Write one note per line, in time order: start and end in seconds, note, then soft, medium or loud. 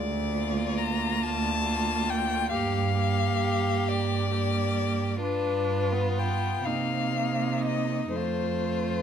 0.00 1.05 D2 medium
0.00 0.79 D5 medium
0.32 1.61 A#3 soft
0.32 1.62 F4 soft
0.78 1.24 A#5 medium
1.19 2.36 D2 medium
1.19 2.12 A5 medium
1.64 2.50 A#3 soft
1.64 2.50 F4 soft
2.10 2.52 G5 medium
2.52 3.71 G2 medium
2.52 2.96 A#3 soft
2.52 2.96 G4 soft
2.52 3.90 F5 medium
2.97 4.29 A#3 soft
2.97 4.29 G4 soft
3.87 5.06 G2 medium
3.87 5.22 D5 medium
4.31 5.20 A#3 soft
4.31 5.20 G4 soft
5.22 6.60 G2 soft
5.22 5.95 D4 soft
5.22 6.67 F4 soft
5.22 6.20 B4 medium
5.93 6.68 B3 soft
6.19 6.66 G5 soft
6.65 8.12 C3 soft
6.65 8.13 A#3 soft
6.65 8.17 D#4 soft
6.65 7.63 F5 soft
7.66 8.14 D#5 medium
8.14 9.02 F2 soft
8.14 9.02 A3 soft
8.14 9.02 F4 soft
8.14 9.02 C5 soft